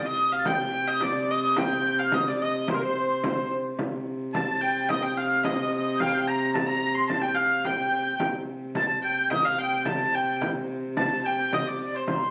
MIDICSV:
0, 0, Header, 1, 5, 480
1, 0, Start_track
1, 0, Tempo, 553506
1, 393, Time_signature, 2, 2, 24, 8
1, 10672, End_track
2, 0, Start_track
2, 0, Title_t, "Recorder"
2, 0, Program_c, 0, 74
2, 40, Note_on_c, 0, 87, 83
2, 316, Note_off_c, 0, 87, 0
2, 334, Note_on_c, 0, 93, 64
2, 394, Note_on_c, 0, 91, 105
2, 407, Note_off_c, 0, 93, 0
2, 874, Note_on_c, 0, 86, 86
2, 887, Note_off_c, 0, 91, 0
2, 1367, Note_on_c, 0, 91, 88
2, 1380, Note_off_c, 0, 86, 0
2, 1840, Note_off_c, 0, 91, 0
2, 1845, Note_on_c, 0, 87, 70
2, 1953, Note_off_c, 0, 87, 0
2, 1970, Note_on_c, 0, 86, 73
2, 2075, Note_off_c, 0, 86, 0
2, 2090, Note_on_c, 0, 87, 73
2, 2331, Note_on_c, 0, 84, 69
2, 2344, Note_off_c, 0, 87, 0
2, 2439, Note_off_c, 0, 84, 0
2, 2444, Note_on_c, 0, 84, 70
2, 3007, Note_off_c, 0, 84, 0
2, 3775, Note_on_c, 0, 93, 73
2, 4253, Note_on_c, 0, 87, 74
2, 4266, Note_off_c, 0, 93, 0
2, 4483, Note_on_c, 0, 89, 70
2, 4496, Note_off_c, 0, 87, 0
2, 4709, Note_off_c, 0, 89, 0
2, 4714, Note_on_c, 0, 87, 68
2, 4782, Note_on_c, 0, 86, 52
2, 4795, Note_off_c, 0, 87, 0
2, 4826, Note_on_c, 0, 87, 76
2, 4839, Note_off_c, 0, 86, 0
2, 4952, Note_off_c, 0, 87, 0
2, 4958, Note_on_c, 0, 87, 68
2, 5167, Note_off_c, 0, 87, 0
2, 5178, Note_on_c, 0, 91, 57
2, 5207, Note_on_c, 0, 89, 80
2, 5220, Note_off_c, 0, 91, 0
2, 5263, Note_off_c, 0, 89, 0
2, 5268, Note_on_c, 0, 89, 76
2, 5324, Note_on_c, 0, 91, 81
2, 5337, Note_off_c, 0, 89, 0
2, 5445, Note_on_c, 0, 94, 81
2, 5458, Note_off_c, 0, 91, 0
2, 5677, Note_off_c, 0, 94, 0
2, 5682, Note_on_c, 0, 93, 83
2, 5792, Note_off_c, 0, 93, 0
2, 5799, Note_on_c, 0, 94, 89
2, 6133, Note_off_c, 0, 94, 0
2, 6151, Note_on_c, 0, 93, 95
2, 6266, Note_off_c, 0, 93, 0
2, 6275, Note_on_c, 0, 91, 74
2, 6394, Note_on_c, 0, 89, 69
2, 6407, Note_off_c, 0, 91, 0
2, 6633, Note_on_c, 0, 91, 66
2, 6646, Note_off_c, 0, 89, 0
2, 7115, Note_off_c, 0, 91, 0
2, 7596, Note_on_c, 0, 93, 83
2, 7819, Note_off_c, 0, 93, 0
2, 7832, Note_on_c, 0, 91, 82
2, 8057, Note_off_c, 0, 91, 0
2, 8076, Note_on_c, 0, 87, 77
2, 8299, Note_off_c, 0, 87, 0
2, 8314, Note_on_c, 0, 91, 71
2, 8537, Note_off_c, 0, 91, 0
2, 8558, Note_on_c, 0, 93, 78
2, 8805, Note_on_c, 0, 91, 69
2, 8818, Note_off_c, 0, 93, 0
2, 9039, Note_off_c, 0, 91, 0
2, 9511, Note_on_c, 0, 93, 79
2, 9752, Note_on_c, 0, 91, 74
2, 9765, Note_off_c, 0, 93, 0
2, 10005, Note_on_c, 0, 87, 76
2, 10018, Note_off_c, 0, 91, 0
2, 10115, Note_on_c, 0, 86, 77
2, 10128, Note_off_c, 0, 87, 0
2, 10352, Note_off_c, 0, 86, 0
2, 10357, Note_on_c, 0, 84, 61
2, 10465, Note_off_c, 0, 84, 0
2, 10472, Note_on_c, 0, 84, 58
2, 10533, Note_on_c, 0, 82, 53
2, 10546, Note_off_c, 0, 84, 0
2, 10596, Note_on_c, 0, 84, 62
2, 10609, Note_off_c, 0, 82, 0
2, 10672, Note_off_c, 0, 84, 0
2, 10672, End_track
3, 0, Start_track
3, 0, Title_t, "Hurdy-gurdy"
3, 0, Program_c, 1, 110
3, 43, Note_on_c, 1, 75, 87
3, 278, Note_off_c, 1, 75, 0
3, 278, Note_on_c, 1, 77, 87
3, 404, Note_off_c, 1, 77, 0
3, 404, Note_on_c, 1, 79, 98
3, 756, Note_on_c, 1, 75, 94
3, 759, Note_off_c, 1, 79, 0
3, 885, Note_off_c, 1, 75, 0
3, 885, Note_on_c, 1, 74, 94
3, 1132, Note_off_c, 1, 74, 0
3, 1132, Note_on_c, 1, 75, 88
3, 1369, Note_off_c, 1, 75, 0
3, 1369, Note_on_c, 1, 79, 103
3, 1727, Note_off_c, 1, 79, 0
3, 1727, Note_on_c, 1, 77, 86
3, 1851, Note_off_c, 1, 77, 0
3, 1851, Note_on_c, 1, 75, 85
3, 1974, Note_off_c, 1, 75, 0
3, 1974, Note_on_c, 1, 74, 74
3, 2094, Note_off_c, 1, 74, 0
3, 2094, Note_on_c, 1, 75, 76
3, 2330, Note_off_c, 1, 75, 0
3, 2330, Note_on_c, 1, 72, 65
3, 2378, Note_on_c, 1, 70, 61
3, 2383, Note_off_c, 1, 72, 0
3, 2441, Note_off_c, 1, 70, 0
3, 2441, Note_on_c, 1, 72, 75
3, 3040, Note_off_c, 1, 72, 0
3, 3762, Note_on_c, 1, 81, 88
3, 3997, Note_off_c, 1, 81, 0
3, 3997, Note_on_c, 1, 79, 80
3, 4237, Note_on_c, 1, 75, 82
3, 4238, Note_off_c, 1, 79, 0
3, 4358, Note_off_c, 1, 75, 0
3, 4358, Note_on_c, 1, 79, 77
3, 4486, Note_off_c, 1, 79, 0
3, 4486, Note_on_c, 1, 77, 80
3, 4713, Note_off_c, 1, 77, 0
3, 4713, Note_on_c, 1, 75, 70
3, 4955, Note_off_c, 1, 75, 0
3, 4955, Note_on_c, 1, 75, 79
3, 5200, Note_off_c, 1, 75, 0
3, 5200, Note_on_c, 1, 77, 88
3, 5219, Note_on_c, 1, 79, 80
3, 5251, Note_off_c, 1, 77, 0
3, 5251, Note_on_c, 1, 77, 85
3, 5313, Note_off_c, 1, 79, 0
3, 5313, Note_on_c, 1, 79, 80
3, 5315, Note_off_c, 1, 77, 0
3, 5439, Note_off_c, 1, 79, 0
3, 5439, Note_on_c, 1, 82, 94
3, 5670, Note_on_c, 1, 81, 78
3, 5679, Note_off_c, 1, 82, 0
3, 5778, Note_off_c, 1, 81, 0
3, 5778, Note_on_c, 1, 82, 91
3, 6024, Note_off_c, 1, 82, 0
3, 6024, Note_on_c, 1, 84, 91
3, 6140, Note_on_c, 1, 81, 96
3, 6151, Note_off_c, 1, 84, 0
3, 6257, Note_on_c, 1, 79, 90
3, 6260, Note_off_c, 1, 81, 0
3, 6375, Note_on_c, 1, 77, 81
3, 6378, Note_off_c, 1, 79, 0
3, 6633, Note_off_c, 1, 77, 0
3, 6633, Note_on_c, 1, 79, 83
3, 7115, Note_off_c, 1, 79, 0
3, 7597, Note_on_c, 1, 81, 90
3, 7704, Note_off_c, 1, 81, 0
3, 7833, Note_on_c, 1, 79, 82
3, 8069, Note_off_c, 1, 79, 0
3, 8069, Note_on_c, 1, 75, 90
3, 8193, Note_off_c, 1, 75, 0
3, 8193, Note_on_c, 1, 77, 76
3, 8313, Note_off_c, 1, 77, 0
3, 8313, Note_on_c, 1, 79, 87
3, 8548, Note_off_c, 1, 79, 0
3, 8548, Note_on_c, 1, 81, 82
3, 8796, Note_off_c, 1, 81, 0
3, 8796, Note_on_c, 1, 79, 74
3, 9035, Note_off_c, 1, 79, 0
3, 9520, Note_on_c, 1, 81, 100
3, 9766, Note_off_c, 1, 81, 0
3, 9766, Note_on_c, 1, 79, 89
3, 10001, Note_off_c, 1, 79, 0
3, 10001, Note_on_c, 1, 75, 82
3, 10122, Note_off_c, 1, 75, 0
3, 10122, Note_on_c, 1, 74, 79
3, 10374, Note_off_c, 1, 74, 0
3, 10374, Note_on_c, 1, 72, 70
3, 10486, Note_off_c, 1, 72, 0
3, 10486, Note_on_c, 1, 72, 64
3, 10672, Note_off_c, 1, 72, 0
3, 10672, End_track
4, 0, Start_track
4, 0, Title_t, "Viola da gamba"
4, 0, Program_c, 2, 42
4, 0, Note_on_c, 2, 48, 65
4, 3277, Note_off_c, 2, 48, 0
4, 3287, Note_on_c, 2, 48, 73
4, 7108, Note_off_c, 2, 48, 0
4, 7114, Note_on_c, 2, 48, 63
4, 10672, Note_off_c, 2, 48, 0
4, 10672, End_track
5, 0, Start_track
5, 0, Title_t, "Frame drum"
5, 153, Note_on_c, 9, 64, 27
5, 240, Note_off_c, 9, 64, 0
5, 394, Note_on_c, 9, 64, 90
5, 481, Note_off_c, 9, 64, 0
5, 636, Note_on_c, 9, 64, 28
5, 722, Note_off_c, 9, 64, 0
5, 872, Note_on_c, 9, 64, 79
5, 958, Note_off_c, 9, 64, 0
5, 1120, Note_on_c, 9, 64, 29
5, 1207, Note_off_c, 9, 64, 0
5, 1356, Note_on_c, 9, 64, 96
5, 1442, Note_off_c, 9, 64, 0
5, 1599, Note_on_c, 9, 64, 28
5, 1686, Note_off_c, 9, 64, 0
5, 1838, Note_on_c, 9, 64, 87
5, 1924, Note_off_c, 9, 64, 0
5, 2084, Note_on_c, 9, 64, 29
5, 2170, Note_off_c, 9, 64, 0
5, 2323, Note_on_c, 9, 64, 85
5, 2410, Note_off_c, 9, 64, 0
5, 2806, Note_on_c, 9, 64, 87
5, 2893, Note_off_c, 9, 64, 0
5, 3045, Note_on_c, 9, 64, 26
5, 3132, Note_off_c, 9, 64, 0
5, 3283, Note_on_c, 9, 64, 79
5, 3370, Note_off_c, 9, 64, 0
5, 3767, Note_on_c, 9, 64, 78
5, 3854, Note_off_c, 9, 64, 0
5, 4246, Note_on_c, 9, 64, 85
5, 4333, Note_off_c, 9, 64, 0
5, 4721, Note_on_c, 9, 64, 86
5, 4808, Note_off_c, 9, 64, 0
5, 5204, Note_on_c, 9, 64, 74
5, 5291, Note_off_c, 9, 64, 0
5, 5680, Note_on_c, 9, 64, 82
5, 5767, Note_off_c, 9, 64, 0
5, 6154, Note_on_c, 9, 64, 74
5, 6241, Note_off_c, 9, 64, 0
5, 6631, Note_on_c, 9, 64, 75
5, 6718, Note_off_c, 9, 64, 0
5, 7108, Note_on_c, 9, 64, 83
5, 7195, Note_off_c, 9, 64, 0
5, 7588, Note_on_c, 9, 64, 86
5, 7674, Note_off_c, 9, 64, 0
5, 8073, Note_on_c, 9, 64, 79
5, 8160, Note_off_c, 9, 64, 0
5, 8546, Note_on_c, 9, 64, 85
5, 8633, Note_off_c, 9, 64, 0
5, 9031, Note_on_c, 9, 64, 86
5, 9118, Note_off_c, 9, 64, 0
5, 9512, Note_on_c, 9, 64, 82
5, 9598, Note_off_c, 9, 64, 0
5, 9995, Note_on_c, 9, 64, 77
5, 10082, Note_off_c, 9, 64, 0
5, 10231, Note_on_c, 9, 64, 22
5, 10318, Note_off_c, 9, 64, 0
5, 10472, Note_on_c, 9, 64, 80
5, 10559, Note_off_c, 9, 64, 0
5, 10672, End_track
0, 0, End_of_file